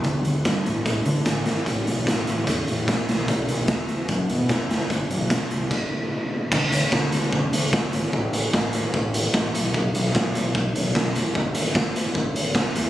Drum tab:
CC |----------------|----------------|----------------|--------x-------|
HH |x-x-x-x-x-x-x-x-|x-x-x-x-x-x-x-x-|x-x-x-x-x-x-x-x-|x-x-x-x---------|
SD |----o-------o-o-|----o-------o-o-|----o-------o-oo|----o-----------|
BD |o---o---o---o---|o---o---o---o---|o---o---o---o---|o---o---o-------|

CC |x---------------|----------------|----------------|----------------|
HH |--x---x---x---x-|--x---x---x---x-|--x---x---x---x-|--x---x---x---x-|
SD |----o-------o---|----o-------oo--|---oo-------o---|---oo-------o---|
BD |o---o---o---o---|o---o---o---o---|o---o---o---o---|o---o---o---o---|